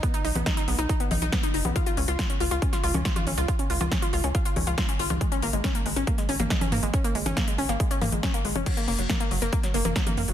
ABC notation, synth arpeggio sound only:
X:1
M:4/4
L:1/16
Q:1/4=139
K:G#m
V:1 name="Synth arpeggio sound"
B, D D B, D D B, D D B, D D B, D D B, | ^E E C E E C E E C E E C E E C E | ^E C E E C E E C E E C E E C E E | G, C A, G, C A, G, C A, G, C A, G, C A, G, |
C A, G, C A, G, C A, G, C A, G, C A, G, C | F, A, A, F, A, A, F, A, A, F, A, A, F, A, A, F, |]